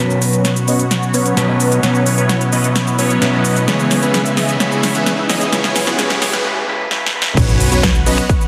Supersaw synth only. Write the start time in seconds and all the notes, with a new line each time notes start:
0.00 F#3 B3 C#4 B4 C#5
0.33 F#3 B3 C#4 B4 C#5
0.68 F#3 B3 C#4 B4 D#5
1.14 F#3 B3 C#4 B4 C#5
1.49 F#3 B3 C#4 B4 D#5
1.83 F#3 B3 C#4 B4 C#5
2.18 F#3 B3 C#4 B4 C#5
2.52 F#3 B3 C#4 B4 D#5
2.99 F#3 B3 C#4 B4 C#5
3.33 F#3 B3 C#4 B4 D#5
3.68 E3 B3 C#4 G#4 C#5
4.03 E3 B3 C#4 G#4 B4
4.37 E3 B3 C#4 G#4 D#5
4.60 E3 B3 C#4 G#4 C#5
4.95 E3 B3 C#4 G#4 B4
5.29 E3 B3 C#4 G#4 D#5
5.53 E3 B3 C#4 G#4 C#5
5.87 E3 B3 C#4 G#4 B4
5.99 E3 B3 C#4 G#4 C#5
6.33 E3 B3 C#4 G#4 B4
7.37 F#3 B3 C#4 B4 C#5
7.72 F#3 B3 C#4 B4 C#5
8.06 F#3 B3 C#4 B4 D#5